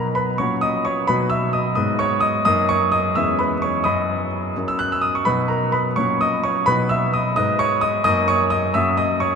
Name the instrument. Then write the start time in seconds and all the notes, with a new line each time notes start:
grand piano
Already playing: B2 F#3 D#4 F#4 A#4
0.15 B4 B5
0.38 A#2 F#3 C#4 F#4 C#5 C#6
0.61 D#5 D#6
0.85 C#5 C#6
1.07 B2 F#3 D#4 F#4 B4 B5
1.30 E5 E6
1.53 D#5 D#6
1.75 G#2 B3 D#4 G#4 D#5 D#6
1.99 C#5 C#6
2.20 D#5 D#6
2.45 F#2 A#3 D#4 A#4 D#5 D#6
2.69 C#5 C#6
2.92 D#5 D#6
3.15 E2 G#3 C#4 B4 E5 E6
3.39 B4 B5
3.62 C#5 C#6
3.84 F#2 F#3 B3 B4 D#5 B5 D#6
4.56 F#2 F#3 C#4 A#4
4.68 E6
4.79 F#6
4.92 E6
5.01 D#6
5.15 C#6
5.25 B2 F#3 D#4 F#4 B4 B5
5.48 A#4 A#5
5.72 B4 B5
5.96 A#2 F#3 C#4 F#4 C#5 C#6
6.21 D#5 D#6
6.44 C#5 C#6
6.66 B2 F#3 D#4 F#4 B4 B5
6.89 E5 E6
7.13 D#5 D#6
7.36 G#2 G#3 D#4 B4 D#5 D#6
7.59 C#5 C#6
7.81 D#5 D#6
8.04 F#2 A#3 D#4 A#4 D#5 D#6
8.28 C#5 C#6
8.50 D#5 D#6
8.74 F#2 A#3 C#4 F#4 E5 E6
8.97 D#5 D#6
9.20 C#5 C#6